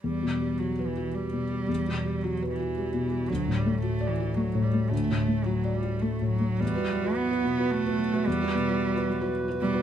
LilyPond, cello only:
\new Staff \with { instrumentName = "Cello" } { \clef bass \time 3/4 \key e \minor \tempo 4 = 110 g4 fis8 e8 g4~ | g4 fis8 e4. | fis8 g8 a8 e8 fis8 g8 | a4 fis8 g8 a8 fis8 |
g4 b4 a4 | g2 r8 g8 | }